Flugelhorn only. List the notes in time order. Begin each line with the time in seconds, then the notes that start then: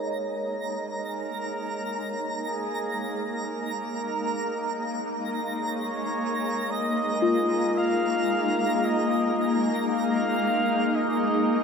0.75 A#4
2.37 G#4
3.45 A#4
5.62 C#5
6.71 D#5
7.78 F5
8.85 D#5
9.90 F5
10.95 D#5